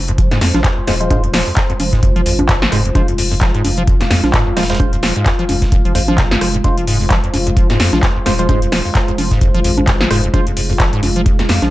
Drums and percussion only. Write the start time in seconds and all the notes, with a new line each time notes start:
0.08 closed hi-hat
0.18 kick, closed hi-hat
0.31 snare, closed hi-hat
0.41 snare, closed hi-hat, open hi-hat
0.54 snare, closed hi-hat, high conga
0.64 kick, snare, clap, closed hi-hat
0.87 snare, closed hi-hat, open hi-hat
1.01 closed hi-hat
1.10 kick, closed hi-hat, high conga
1.24 closed hi-hat
1.33 snare, closed hi-hat, open hi-hat
1.57 kick, snare, clap, closed hi-hat
1.70 closed hi-hat
1.80 closed hi-hat, open hi-hat, high conga
1.93 kick, snare, closed hi-hat
2.03 kick, closed hi-hat
2.16 closed hi-hat
2.26 closed hi-hat, open hi-hat
2.39 closed hi-hat, high conga
2.49 kick, snare, clap, closed hi-hat
2.62 snare
2.72 cross-stick, closed hi-hat, open hi-hat
2.85 closed hi-hat
2.95 kick, closed hi-hat, high conga
3.08 closed hi-hat
3.18 closed hi-hat, open hi-hat
3.41 kick, snare, clap, closed hi-hat
3.54 closed hi-hat
3.65 closed hi-hat, open hi-hat, high conga
3.78 closed hi-hat
3.88 kick, closed hi-hat
4.01 snare, closed hi-hat
4.11 snare, closed hi-hat, open hi-hat
4.24 snare, closed hi-hat, high conga
4.34 kick, snare, clap, closed hi-hat
4.57 snare, closed hi-hat, open hi-hat
4.63 snare, closed hi-hat
4.70 snare, closed hi-hat
4.75 snare, closed hi-hat
4.80 kick, closed hi-hat, high conga
4.93 closed hi-hat
5.03 snare, closed hi-hat, open hi-hat
5.26 kick, snare, clap, closed hi-hat
5.39 closed hi-hat
5.49 closed hi-hat, open hi-hat, high conga
5.62 kick, snare, closed hi-hat
5.72 kick, closed hi-hat
5.85 closed hi-hat
5.95 closed hi-hat, open hi-hat
6.08 closed hi-hat, high conga
6.18 kick, snare, clap, closed hi-hat
6.31 snare, closed hi-hat
6.41 cross-stick, closed hi-hat, open hi-hat
6.54 closed hi-hat
6.64 kick, closed hi-hat, high conga
6.78 closed hi-hat
6.87 closed hi-hat, open hi-hat
7.10 kick, snare, clap, closed hi-hat
7.24 closed hi-hat
7.34 closed hi-hat, open hi-hat, high conga
7.47 closed hi-hat
7.57 kick, closed hi-hat
7.70 snare, closed hi-hat
7.80 snare, closed hi-hat, open hi-hat
7.93 snare, high conga
8.03 kick, snare, clap, closed hi-hat
8.26 snare, closed hi-hat, open hi-hat
8.39 closed hi-hat
8.49 kick, closed hi-hat, high conga
8.62 closed hi-hat
8.72 snare, closed hi-hat, open hi-hat
8.95 kick, snare, clap, closed hi-hat
9.08 closed hi-hat
9.18 closed hi-hat, open hi-hat, high conga
9.31 kick, snare, closed hi-hat
9.41 kick, closed hi-hat
9.55 closed hi-hat
9.64 closed hi-hat, open hi-hat
9.78 closed hi-hat, high conga
9.88 kick, snare, clap, closed hi-hat
10.01 snare
10.11 cross-stick, closed hi-hat, open hi-hat
10.24 closed hi-hat
10.34 kick, closed hi-hat, high conga
10.47 closed hi-hat
10.57 closed hi-hat, open hi-hat
10.80 kick, snare, clap, closed hi-hat
10.93 closed hi-hat
11.03 closed hi-hat, open hi-hat, high conga
11.16 closed hi-hat
11.26 kick, closed hi-hat
11.39 snare, closed hi-hat
11.49 snare, closed hi-hat, open hi-hat
11.62 snare, closed hi-hat, high conga